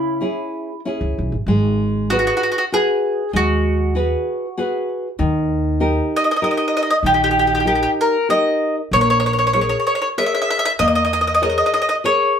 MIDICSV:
0, 0, Header, 1, 4, 480
1, 0, Start_track
1, 0, Key_signature, 5, "minor"
1, 0, Tempo, 623053
1, 1126, Time_signature, 3, 2, 24, 8
1, 9551, End_track
2, 0, Start_track
2, 0, Title_t, "Mandolin"
2, 0, Program_c, 0, 25
2, 0, Note_on_c, 0, 64, 55
2, 611, Note_off_c, 0, 64, 0
2, 1619, Note_on_c, 0, 66, 74
2, 1679, Note_off_c, 0, 66, 0
2, 1688, Note_on_c, 0, 66, 51
2, 1739, Note_off_c, 0, 66, 0
2, 1748, Note_on_c, 0, 66, 56
2, 1808, Note_off_c, 0, 66, 0
2, 1824, Note_on_c, 0, 66, 57
2, 1866, Note_off_c, 0, 66, 0
2, 1875, Note_on_c, 0, 66, 56
2, 1924, Note_off_c, 0, 66, 0
2, 1939, Note_on_c, 0, 66, 53
2, 1979, Note_off_c, 0, 66, 0
2, 1989, Note_on_c, 0, 66, 58
2, 2033, Note_off_c, 0, 66, 0
2, 2109, Note_on_c, 0, 68, 80
2, 2548, Note_off_c, 0, 68, 0
2, 2591, Note_on_c, 0, 66, 78
2, 3764, Note_off_c, 0, 66, 0
2, 4749, Note_on_c, 0, 75, 75
2, 4790, Note_off_c, 0, 75, 0
2, 4809, Note_on_c, 0, 75, 47
2, 4846, Note_off_c, 0, 75, 0
2, 4864, Note_on_c, 0, 75, 53
2, 4893, Note_off_c, 0, 75, 0
2, 4903, Note_on_c, 0, 75, 45
2, 4944, Note_off_c, 0, 75, 0
2, 4961, Note_on_c, 0, 75, 56
2, 5006, Note_off_c, 0, 75, 0
2, 5016, Note_on_c, 0, 75, 43
2, 5056, Note_off_c, 0, 75, 0
2, 5065, Note_on_c, 0, 75, 55
2, 5124, Note_off_c, 0, 75, 0
2, 5144, Note_on_c, 0, 75, 47
2, 5197, Note_off_c, 0, 75, 0
2, 5214, Note_on_c, 0, 75, 60
2, 5250, Note_off_c, 0, 75, 0
2, 5259, Note_on_c, 0, 75, 53
2, 5303, Note_off_c, 0, 75, 0
2, 5320, Note_on_c, 0, 75, 65
2, 5360, Note_off_c, 0, 75, 0
2, 5441, Note_on_c, 0, 67, 70
2, 5493, Note_off_c, 0, 67, 0
2, 5502, Note_on_c, 0, 67, 49
2, 5556, Note_off_c, 0, 67, 0
2, 5577, Note_on_c, 0, 67, 57
2, 5622, Note_off_c, 0, 67, 0
2, 5631, Note_on_c, 0, 67, 52
2, 5684, Note_off_c, 0, 67, 0
2, 5696, Note_on_c, 0, 67, 52
2, 5740, Note_off_c, 0, 67, 0
2, 5757, Note_on_c, 0, 67, 41
2, 5796, Note_off_c, 0, 67, 0
2, 5815, Note_on_c, 0, 67, 47
2, 5847, Note_off_c, 0, 67, 0
2, 5857, Note_on_c, 0, 67, 43
2, 5898, Note_off_c, 0, 67, 0
2, 5912, Note_on_c, 0, 67, 51
2, 5960, Note_off_c, 0, 67, 0
2, 5974, Note_on_c, 0, 67, 40
2, 6021, Note_off_c, 0, 67, 0
2, 6030, Note_on_c, 0, 67, 54
2, 6085, Note_off_c, 0, 67, 0
2, 6169, Note_on_c, 0, 70, 69
2, 6373, Note_off_c, 0, 70, 0
2, 6395, Note_on_c, 0, 75, 72
2, 6740, Note_off_c, 0, 75, 0
2, 6882, Note_on_c, 0, 73, 78
2, 6933, Note_off_c, 0, 73, 0
2, 6942, Note_on_c, 0, 73, 60
2, 7000, Note_off_c, 0, 73, 0
2, 7012, Note_on_c, 0, 73, 63
2, 7067, Note_off_c, 0, 73, 0
2, 7086, Note_on_c, 0, 73, 58
2, 7126, Note_off_c, 0, 73, 0
2, 7135, Note_on_c, 0, 73, 53
2, 7181, Note_off_c, 0, 73, 0
2, 7190, Note_on_c, 0, 73, 46
2, 7222, Note_off_c, 0, 73, 0
2, 7231, Note_on_c, 0, 73, 54
2, 7284, Note_off_c, 0, 73, 0
2, 7294, Note_on_c, 0, 73, 52
2, 7336, Note_off_c, 0, 73, 0
2, 7345, Note_on_c, 0, 73, 58
2, 7397, Note_off_c, 0, 73, 0
2, 7406, Note_on_c, 0, 73, 50
2, 7459, Note_off_c, 0, 73, 0
2, 7468, Note_on_c, 0, 73, 56
2, 7528, Note_off_c, 0, 73, 0
2, 7546, Note_on_c, 0, 73, 42
2, 7592, Note_off_c, 0, 73, 0
2, 7601, Note_on_c, 0, 73, 57
2, 7653, Note_off_c, 0, 73, 0
2, 7666, Note_on_c, 0, 73, 55
2, 7707, Note_off_c, 0, 73, 0
2, 7716, Note_on_c, 0, 73, 55
2, 7761, Note_off_c, 0, 73, 0
2, 7844, Note_on_c, 0, 76, 78
2, 7897, Note_off_c, 0, 76, 0
2, 7906, Note_on_c, 0, 76, 58
2, 7961, Note_off_c, 0, 76, 0
2, 7970, Note_on_c, 0, 76, 62
2, 8015, Note_off_c, 0, 76, 0
2, 8024, Note_on_c, 0, 76, 66
2, 8083, Note_off_c, 0, 76, 0
2, 8093, Note_on_c, 0, 76, 69
2, 8144, Note_off_c, 0, 76, 0
2, 8159, Note_on_c, 0, 76, 70
2, 8199, Note_off_c, 0, 76, 0
2, 8208, Note_on_c, 0, 76, 83
2, 8254, Note_off_c, 0, 76, 0
2, 8314, Note_on_c, 0, 75, 89
2, 8370, Note_off_c, 0, 75, 0
2, 8379, Note_on_c, 0, 75, 55
2, 8429, Note_off_c, 0, 75, 0
2, 8439, Note_on_c, 0, 75, 65
2, 8502, Note_off_c, 0, 75, 0
2, 8510, Note_on_c, 0, 75, 62
2, 8567, Note_off_c, 0, 75, 0
2, 8576, Note_on_c, 0, 75, 70
2, 8626, Note_off_c, 0, 75, 0
2, 8637, Note_on_c, 0, 75, 51
2, 8676, Note_off_c, 0, 75, 0
2, 8685, Note_on_c, 0, 75, 53
2, 8731, Note_off_c, 0, 75, 0
2, 8740, Note_on_c, 0, 75, 58
2, 8786, Note_off_c, 0, 75, 0
2, 8803, Note_on_c, 0, 75, 58
2, 8846, Note_off_c, 0, 75, 0
2, 8856, Note_on_c, 0, 75, 51
2, 8911, Note_off_c, 0, 75, 0
2, 8919, Note_on_c, 0, 75, 60
2, 8975, Note_off_c, 0, 75, 0
2, 8983, Note_on_c, 0, 75, 57
2, 9033, Note_off_c, 0, 75, 0
2, 9042, Note_on_c, 0, 75, 63
2, 9093, Note_off_c, 0, 75, 0
2, 9103, Note_on_c, 0, 75, 56
2, 9148, Note_off_c, 0, 75, 0
2, 9159, Note_on_c, 0, 75, 61
2, 9203, Note_off_c, 0, 75, 0
2, 9287, Note_on_c, 0, 73, 67
2, 9527, Note_off_c, 0, 73, 0
2, 9551, End_track
3, 0, Start_track
3, 0, Title_t, "Nylon-string guitar"
3, 0, Program_c, 1, 24
3, 0, Note_on_c, 1, 49, 55
3, 147, Note_off_c, 1, 49, 0
3, 159, Note_on_c, 1, 61, 38
3, 166, Note_on_c, 1, 68, 44
3, 171, Note_on_c, 1, 64, 32
3, 545, Note_off_c, 1, 61, 0
3, 550, Note_off_c, 1, 68, 0
3, 551, Note_off_c, 1, 64, 0
3, 658, Note_on_c, 1, 61, 43
3, 661, Note_on_c, 1, 64, 40
3, 671, Note_on_c, 1, 68, 45
3, 1039, Note_off_c, 1, 61, 0
3, 1040, Note_off_c, 1, 64, 0
3, 1047, Note_off_c, 1, 68, 0
3, 1139, Note_on_c, 1, 56, 58
3, 1600, Note_off_c, 1, 56, 0
3, 1627, Note_on_c, 1, 68, 38
3, 1630, Note_on_c, 1, 66, 44
3, 1636, Note_on_c, 1, 71, 50
3, 2003, Note_off_c, 1, 68, 0
3, 2006, Note_off_c, 1, 66, 0
3, 2007, Note_off_c, 1, 71, 0
3, 2098, Note_on_c, 1, 66, 46
3, 2104, Note_on_c, 1, 68, 40
3, 2106, Note_on_c, 1, 71, 49
3, 2478, Note_off_c, 1, 66, 0
3, 2482, Note_off_c, 1, 68, 0
3, 2482, Note_off_c, 1, 71, 0
3, 2567, Note_on_c, 1, 56, 61
3, 3031, Note_off_c, 1, 56, 0
3, 3044, Note_on_c, 1, 66, 49
3, 3049, Note_on_c, 1, 68, 41
3, 3054, Note_on_c, 1, 71, 49
3, 3425, Note_off_c, 1, 66, 0
3, 3428, Note_off_c, 1, 68, 0
3, 3431, Note_off_c, 1, 71, 0
3, 3525, Note_on_c, 1, 68, 46
3, 3528, Note_on_c, 1, 66, 43
3, 3534, Note_on_c, 1, 71, 53
3, 3904, Note_off_c, 1, 68, 0
3, 3906, Note_off_c, 1, 66, 0
3, 3910, Note_off_c, 1, 71, 0
3, 3996, Note_on_c, 1, 51, 57
3, 4457, Note_off_c, 1, 51, 0
3, 4470, Note_on_c, 1, 67, 47
3, 4473, Note_on_c, 1, 63, 47
3, 4476, Note_on_c, 1, 70, 54
3, 4851, Note_off_c, 1, 67, 0
3, 4853, Note_off_c, 1, 63, 0
3, 4853, Note_off_c, 1, 70, 0
3, 4946, Note_on_c, 1, 63, 50
3, 4946, Note_on_c, 1, 67, 47
3, 4948, Note_on_c, 1, 70, 51
3, 5328, Note_off_c, 1, 67, 0
3, 5328, Note_off_c, 1, 70, 0
3, 5330, Note_off_c, 1, 63, 0
3, 5423, Note_on_c, 1, 51, 54
3, 5891, Note_off_c, 1, 51, 0
3, 5894, Note_on_c, 1, 63, 45
3, 5897, Note_on_c, 1, 67, 41
3, 5902, Note_on_c, 1, 70, 43
3, 6285, Note_off_c, 1, 63, 0
3, 6288, Note_off_c, 1, 67, 0
3, 6288, Note_off_c, 1, 70, 0
3, 6385, Note_on_c, 1, 67, 38
3, 6391, Note_on_c, 1, 63, 44
3, 6395, Note_on_c, 1, 70, 52
3, 6774, Note_off_c, 1, 67, 0
3, 6778, Note_off_c, 1, 63, 0
3, 6779, Note_off_c, 1, 70, 0
3, 6884, Note_on_c, 1, 58, 58
3, 7348, Note_off_c, 1, 58, 0
3, 7356, Note_on_c, 1, 70, 39
3, 7356, Note_on_c, 1, 73, 49
3, 7360, Note_on_c, 1, 68, 45
3, 7741, Note_off_c, 1, 73, 0
3, 7743, Note_off_c, 1, 70, 0
3, 7744, Note_off_c, 1, 68, 0
3, 7840, Note_on_c, 1, 68, 44
3, 7843, Note_on_c, 1, 70, 41
3, 7846, Note_on_c, 1, 73, 50
3, 8225, Note_off_c, 1, 68, 0
3, 8226, Note_off_c, 1, 70, 0
3, 8228, Note_off_c, 1, 73, 0
3, 8320, Note_on_c, 1, 58, 57
3, 8785, Note_off_c, 1, 58, 0
3, 8797, Note_on_c, 1, 68, 46
3, 8798, Note_on_c, 1, 70, 44
3, 8803, Note_on_c, 1, 73, 47
3, 9181, Note_off_c, 1, 70, 0
3, 9182, Note_off_c, 1, 68, 0
3, 9182, Note_off_c, 1, 73, 0
3, 9276, Note_on_c, 1, 68, 53
3, 9277, Note_on_c, 1, 70, 39
3, 9282, Note_on_c, 1, 73, 52
3, 9551, Note_off_c, 1, 68, 0
3, 9551, Note_off_c, 1, 70, 0
3, 9551, Note_off_c, 1, 73, 0
3, 9551, End_track
4, 0, Start_track
4, 0, Title_t, "Upright bass"
4, 0, Program_c, 2, 32
4, 777, Note_on_c, 2, 37, 71
4, 896, Note_off_c, 2, 37, 0
4, 912, Note_on_c, 2, 35, 65
4, 1009, Note_off_c, 2, 35, 0
4, 1017, Note_on_c, 2, 32, 59
4, 1115, Note_off_c, 2, 32, 0
4, 1128, Note_on_c, 2, 32, 80
4, 1753, Note_off_c, 2, 32, 0
4, 2570, Note_on_c, 2, 39, 76
4, 3189, Note_off_c, 2, 39, 0
4, 4000, Note_on_c, 2, 39, 84
4, 4616, Note_off_c, 2, 39, 0
4, 5414, Note_on_c, 2, 34, 69
4, 6044, Note_off_c, 2, 34, 0
4, 6867, Note_on_c, 2, 34, 82
4, 7497, Note_off_c, 2, 34, 0
4, 8319, Note_on_c, 2, 40, 74
4, 8942, Note_off_c, 2, 40, 0
4, 9551, End_track
0, 0, End_of_file